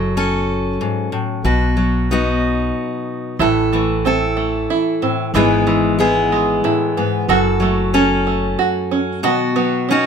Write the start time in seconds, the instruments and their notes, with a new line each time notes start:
Already playing: upright bass F#1, steel-string acoustic guitar F#2 F#3 A4
0.17 steel-string acoustic guitar C#4 A4
0.81 steel-string acoustic guitar G#2
1.12 steel-string acoustic guitar A2
1.44 upright bass B1, steel-string acoustic guitar B2 F#4
1.77 steel-string acoustic guitar F#3
2.11 steel-string acoustic guitar B3 D#4 F#4
3.39 upright bass A1, steel-string acoustic guitar A2 A4, five-string banjo E3 E4
3.73 steel-string acoustic guitar E3, five-string banjo A3
4.05 five-string banjo C4, steel-string acoustic guitar E4 A4
4.37 five-string banjo A3
4.70 five-string banjo E4
5.02 steel-string acoustic guitar A2, five-string banjo C4
5.34 upright bass G#1, steel-string acoustic guitar G#2 E3 G#3 B3 G#4, five-string banjo E3 E4
5.67 steel-string acoustic guitar E3, five-string banjo G#3
5.99 steel-string acoustic guitar G#3 B3 G#4, five-string banjo B3
6.32 five-string banjo G#3
6.64 steel-string acoustic guitar A2, five-string banjo E4
6.97 steel-string acoustic guitar G#2, five-string banjo B3
7.29 upright bass F#1, steel-string acoustic guitar F#2 A4, five-string banjo F#3 F#4
7.60 steel-string acoustic guitar F#3, five-string banjo A3
7.94 steel-string acoustic guitar C#4 A4, five-string banjo C#4
8.27 five-string banjo A3
8.59 five-string banjo F#4
8.91 five-string banjo C#4
9.23 steel-string acoustic guitar B2 F#4, five-string banjo D#3 F#4
9.56 steel-string acoustic guitar F#3, five-string banjo B3
9.89 five-string banjo C#4, steel-string acoustic guitar C#4 D#4 F#4